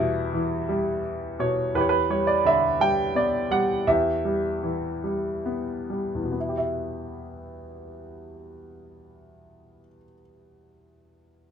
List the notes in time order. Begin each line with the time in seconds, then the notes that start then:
Already playing: E2 G3 E4
0.00 B2
0.33 E3
0.69 G3
1.39 B2 C#5
1.74 E2 G4 B4
1.81 C#5
1.89 B4
2.10 G3 C#5
2.27 D5
2.45 D3 E5
2.80 G3 G5
3.15 B3 D5
3.51 G3 F#5
3.87 E2 G4 E5
4.25 G3
4.63 E3
5.04 G3
5.46 B3
5.90 G3
6.15 E2
6.23 B2
6.32 B3
6.40 E4
6.49 G4
6.58 E5